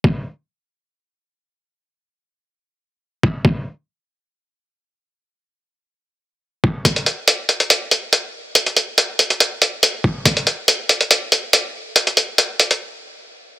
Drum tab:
HH |----------------|----------------|----------------|----------------|
BD |o---------------|--------------o-|o---------------|--------------o-|

HH |xxx-x-xxx-x-x---|xxx-x-xxx-x-x---|xxx-x-xxx-x-x---|xxx-x-xx--------|
BD |o---------------|--------------o-|o---------------|----------------|